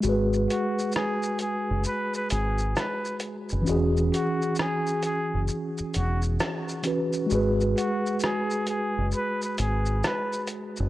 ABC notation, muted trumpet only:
X:1
M:4/4
L:1/16
Q:"Swing 16ths" 1/4=66
K:G#m
V:1 name="Muted trumpet"
z2 F2 G2 G2 B B G2 B2 z2 | z2 F2 G2 G2 z2 F z4 z | z2 F2 G2 G2 B B G2 B2 z2 |]